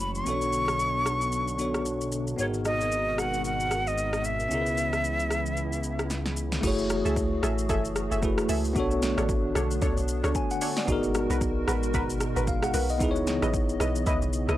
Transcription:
Already playing: F#1 E3 F#3 G#3 A3 E4 F#4 C#5
0.00 B5
0.15 C#6, shaker
0.24 B1 D3 B3 C#4 D4 F#4, shaker
0.29 D4 A4 C#5
0.41 shaker
0.53 shaker
0.68 cross-stick, shaker
0.79 shaker
1.06 cross-stick, shaker
1.21 shaker
1.32 shaker
1.48 shaker
1.58 B3 D4 F#4 A4 C#5, shaker
1.74 cross-stick, shaker
1.85 shaker
2.01 shaker
2.12 shaker
2.27 shaker
2.36 G#1 B2 G#3 B3 D#4 F#4 A#4 C#5, shaker
2.41 G#4 A#4
2.54 shaker
2.65 D#5, cross-stick, shaker
2.81 shaker
2.92 shaker
3.18 F#5, cross-stick, shaker
3.34 shaker
3.44 F#5, shaker
3.60 shaker
3.71 cross-stick, shaker
3.87 D#5, shaker
3.98 shaker
4.13 cross-stick, shaker
4.24 E5, shaker
4.40 shaker
4.49 C#2 C#3 E3 B3 C#4 E4, shaker
4.53 G#4 A#4
4.61 B4
4.66 shaker
4.77 shaker
4.93 cross-stick, shaker
5.04 shaker
5.20 shaker
5.31 cross-stick, shaker
5.46 shaker
5.57 shaker
5.72 shaker
5.83 shaker
5.99 cross-stick, shaker
6.10 snare, shaker
6.26 snare, shaker
6.37 shaker
6.52 snare, shaker
6.61 F#1 E3 A3 E4 F#4 G#4, kick, crash, shaker
6.66 G#4 C#5
6.79 shaker
6.90 cross-stick, shaker
7.05 C#2 G#4 A4 E5, shaker
7.16 kick, shaker
7.43 A1 G#4 A4 E5, cross-stick, shaker
7.58 shaker
7.69 F#1 G#4 A4 E5, kick, shaker
7.85 shaker
7.96 cross-stick, shaker
8.11 F#1 G#4 A4 E5, shaker
8.22 A3 E4 F#4 G#4 B4, kick, shaker
8.38 cross-stick, shaker
8.49 C#2 G#4 A4 E5, open hi-hat, shaker
8.65 shaker
8.73 B1 D3 B3 D4 F#4, kick, shaker
8.78 A4 C#5
8.91 shaker
9.02 snare, shaker
9.17 A1 D4 A4 C#5, cross-stick, shaker
9.29 kick, shaker
9.55 B1 D4 A4 C#5, cross-stick, shaker
9.71 shaker
9.82 C#2 D4 A4 C#5, kick, shaker
9.97 B1, shaker
10.08 shaker
10.23 C#2 D4 A4 C#5, cross-stick, shaker
10.35 G#5, kick, shaker
10.51 F#5, shaker
10.61 D4 A4 C#5, open hi-hat, shaker
10.77 D5, snare, shaker
10.86 G#1 B2 G#3 B3 D#4 F#4 A#4, kick, shaker
10.90 G#4 A#4
11.03 shaker
11.15 cross-stick, shaker
11.30 B1 F#4 A#4 B4, shaker
11.41 kick, shaker
11.68 A1 F#4 A#4 B4, cross-stick, shaker
11.83 shaker
11.94 G#1 F#4 A#4 B4, kick, shaker
12.10 shaker
12.21 cross-stick, shaker
12.36 G#1 F#4 A#4 B4, shaker
12.47 F5, kick, shaker
12.62 F#5, cross-stick, shaker
12.74 B1 F#4 A#4 B4, open hi-hat, shaker
12.89 D#5, shaker
12.98 C#2 C#3 E3 B3 D#4 E4 D#5, kick, shaker
13.03 G#4 B4
13.11 C#5
13.16 shaker
13.27 snare, shaker
13.42 A1 E4 B4 D#5, cross-stick, shaker
13.54 kick, shaker
13.69 shaker
13.80 B1 E4 B4 D#5, cross-stick, shaker
13.96 shaker
14.06 C#2 E4 B4 D#5, kick, shaker
14.22 B1, shaker
14.33 shaker
14.48 C#2 E4 B4 D#5, cross-stick, shaker

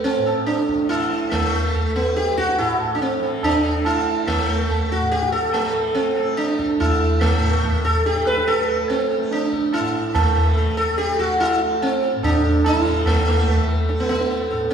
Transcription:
Already playing: A2 E3 A3
0.04 C4, tabla tin
0.18 A2
0.26 A4, tabla na
0.46 D4, tabla te
0.58 tabla te
0.69 tabla ke
0.76 E3, tabla te
0.89 E4, tabla na
1.11 A4
1.31 A3, tabla na, tabla ge
1.37 A3
1.54 A4
1.75 A4, tabla tin, tabla ge
1.96 A3 B3
2.16 G4, tabla te
2.28 tabla te
2.38 F#4, tabla ke
2.49 tabla te
2.58 A2 E4, tabla na
2.80 A4, tabla na
2.95 D4
3.01 C4, tabla tin
3.19 E3 A4
3.43 D4, tabla na, tabla ge
3.64 A4, tabla te
3.80 A3
3.85 E4, tabla na
4.27 A3, tabla na, tabla ge
4.39 A3
4.48 A4
4.69 A4, tabla tin, tabla ge
4.92 F#4
4.99 A2
5.11 G4, tabla te
5.22 tabla te
5.32 A4, tabla ke
5.43 tabla te
5.54 A3, tabla na
5.59 E3
5.74 A4
5.95 C4, tabla tin
6.16 A3 A4, tabla na
6.37 D4, tabla te
6.49 tabla te
6.59 A4, tabla ke
6.70 tabla te
6.78 A3 E4, tabla na, tabla ge
7.02 tabla ge
7.21 A3, tabla na, tabla ge
7.38 A2
7.64 A4, tabla tin, tabla ge
7.85 A4, tabla na
7.95 E3, tabla ke
8.06 G4, tabla te
8.16 tabla te
8.26 B4, tabla ke
8.37 tabla te
8.47 A4, tabla na
8.58 A3
8.68 A4
8.89 C4, tabla tin
9.11 A4
9.18 A3
9.31 D4, tabla te
9.42 tabla te
9.53 A4, tabla ke
9.62 tabla te
9.73 E4, tabla na
9.78 A2
10.15 A3, tabla na, tabla ge
10.35 E3 A4
10.56 A4, tabla tin, tabla ge
10.77 A4
10.96 A3 G4, tabla te
11.09 tabla te
11.19 F#4, tabla ke
11.30 tabla te
11.40 E4, tabla na
11.56 A3
11.82 C4, tabla tin
12.03 A4
12.15 A2
12.23 D4, tabla na, tabla ge
12.44 A4, tabla te
12.65 E4, tabla na, tabla ge
12.74 E3
12.85 A4, tabla te
13.06 A3, tabla na, tabla ge
13.28 A4
13.33 A3
13.48 A4, tabla tin, tabla ge
13.69 A4
13.89 A3 A4, tabla te
14.00 B3, tabla te
14.09 B3, tabla ke
14.21 tabla te
14.30 A4, tabla te
14.50 A2 A4, tabla te
14.71 C4

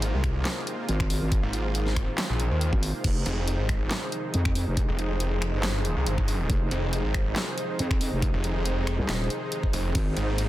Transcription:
Already playing: G#1 C3 D#3 G#3 A#3 D#4 F4 G#4 C5
0.02 closed hi-hat
0.14 C2
0.24 finger snap, kick, closed hi-hat
0.45 snare, clap, closed hi-hat
0.67 closed hi-hat
0.89 G#1, closed hi-hat
1.00 finger snap, kick
1.10 open hi-hat
1.22 G#1
1.32 kick, closed hi-hat
1.43 G#1
1.53 closed hi-hat
1.75 closed hi-hat
1.86 snare
1.96 finger snap, kick, closed hi-hat
2.18 finger snap, snare, clap, closed hi-hat
2.30 A#1
2.40 closed hi-hat
2.51 D#2
2.61 closed hi-hat
2.73 G#1, kick
2.83 open hi-hat
3.04 F1 C3 D#3 F3 G#3 D#4, kick, closed hi-hat, crash
3.26 F1, closed hi-hat
3.48 closed hi-hat
3.59 G#1
3.69 finger snap, kick, closed hi-hat
3.91 snare, clap, closed hi-hat
4.12 closed hi-hat
4.34 F2, closed hi-hat
4.45 finger snap, kick
4.55 open hi-hat
4.67 F1
4.77 kick, closed hi-hat
4.89 F1
4.99 closed hi-hat
5.20 closed hi-hat
5.42 finger snap, closed hi-hat
5.53 G1
5.63 finger snap, snare, clap, closed hi-hat
5.85 closed hi-hat
5.96 C2
6.07 G1, closed hi-hat
6.18 kick
6.28 open hi-hat
6.50 F1, kick, closed hi-hat
6.71 F1, closed hi-hat
6.93 closed hi-hat
7.04 G#1
7.14 finger snap, kick, closed hi-hat
7.36 snare, clap, closed hi-hat
7.58 closed hi-hat
7.79 F2, closed hi-hat
7.91 finger snap, kick
8.01 open hi-hat
8.12 F1
8.22 kick, closed hi-hat
8.34 F1
8.44 closed hi-hat
8.66 closed hi-hat
8.87 finger snap, closed hi-hat
8.99 C2
9.09 D#1, finger snap, snare, clap, closed hi-hat
9.30 closed hi-hat
9.52 closed hi-hat
9.63 kick
9.73 F1, open hi-hat
9.95 G#1 A#3, kick, closed hi-hat, ride
10.17 G#1, closed hi-hat
10.38 closed hi-hat, ride

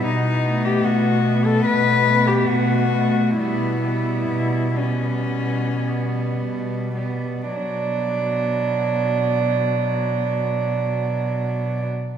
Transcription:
0.06 B2 D#4
0.44 A3 B3
0.65 G4
0.85 B2 F#4
1.24 A3 B3
1.45 A4
1.66 B2 B4
2.06 A3 B3
2.27 G4
2.48 B2 F#4
2.91 A3 B3
3.37 B2 G3 B3 E4
3.82 G3 B3
4.29 B2
4.76 G3 B3 C#4
5.28 B2
5.79 G3 B3
6.36 B2
6.95 G3 B3
7.54 B2 F#3 B3 D4

